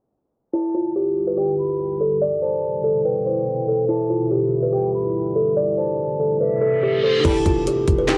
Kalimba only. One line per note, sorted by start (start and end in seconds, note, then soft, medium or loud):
0.53 0.72 E4 medium
0.74 0.93 F4 medium
0.96 1.25 G4 medium
1.27 1.36 B4 medium
1.37 1.96 G4 medium
2.01 2.19 A4 medium
2.22 2.40 D5 loud
2.42 2.61 C5 medium
2.84 3.02 A4 medium
3.05 3.24 B4 medium
3.26 3.66 C5 medium
3.68 3.87 A4 medium
3.89 4.07 E4 loud
4.10 4.28 F4 medium
4.31 4.61 G4 medium
4.63 4.72 B4 medium
4.73 5.32 G4 medium
5.36 5.54 A4 medium
5.57 5.75 D5 loud
5.78 5.96 C5 medium
6.20 6.38 A4 medium
6.41 6.59 B4 medium
6.61 6.80 A4 medium
6.83 7.01 G4 medium
7.04 7.22 A4 medium
7.24 7.43 E4 loud
7.46 7.64 F4 medium
7.67 7.97 G4 medium
7.98 8.08 B4 medium
8.08 8.18 G4 medium